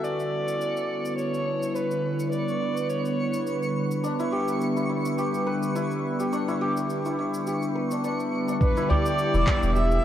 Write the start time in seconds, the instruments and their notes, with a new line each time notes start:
Already playing: analog synth pad D3 G3 B3 E4 B4, santur C#4 F#4 A4 F#5, synth texture C#6
0.04 kamancheh D5, shaker
0.20 shaker
0.48 shaker
0.61 shaker
0.77 shaker
1.05 shaker
1.18 kamancheh C#5, shaker
1.34 shaker
1.63 shaker
1.75 kamancheh B4, shaker
1.91 shaker
2.20 shaker
2.32 kamancheh D5, shaker
2.48 shaker
2.77 shaker
2.90 kamancheh C#5, shaker
3.06 shaker
3.34 shaker
3.47 shaker
3.63 shaker
3.91 shaker
4.04 santur D4, analog synth pad D4, shaker
4.19 santur E4, shaker
4.32 santur G4
4.48 shaker
4.61 shaker
4.77 santur E4, shaker
4.89 santur E4
5.05 shaker
5.18 santur G4, shaker
5.34 shaker
5.47 santur B4
5.63 shaker
5.75 santur E4, shaker
5.91 shaker
6.20 santur G4, shaker
6.33 santur D4, shaker
6.48 santur E4, shaker
6.61 santur G4
6.77 shaker
6.90 shaker
7.05 santur E4, shaker
7.19 santur E4
7.34 shaker
7.47 santur G4, shaker
7.63 shaker
7.76 santur B4
7.91 santur D4, shaker
8.04 santur D4, shaker
8.20 shaker
8.48 santur D4, shaker
8.61 analog synth pad D3 G3 B3 E4 G4, santur D4, kamancheh B4, synth texture E5, kick, shaker
8.77 santur E4, shaker
8.89 santur G4, kamancheh D5, udu
9.06 shaker
9.18 shaker
9.34 sub bass E1, santur E4, shaker
9.47 santur E4, kick, clap
9.63 sub bass E1, shaker
9.75 santur G4, kamancheh E5, shaker
9.91 shaker